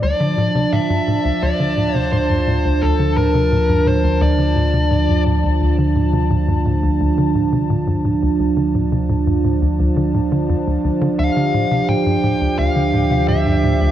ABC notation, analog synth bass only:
X:1
M:4/4
L:1/16
Q:1/4=86
K:Dm
V:1 name="Analog synth bass" clef=bass
D,, D, A,, C, A,, G,, A,, D,, D,, D, A,, C, A,, G,, A,, D,, | D,, D, A,, C, A,, G,, A,, D,, D,, D, A,, C, A,, G,, A,, D,, | D,, D, A,, C, A,, G,, A,, D,, D,, D, A,, C, A,, G,, A,, D,, | D,, D, A,, C, A,, G,, A,, D,, D,, D, A,, D, F,, D,, D,, D, |
D,, D, A,, C, A,, G,, A,, D,, D,, D, A,, C, A,, G,, A,, D,, |]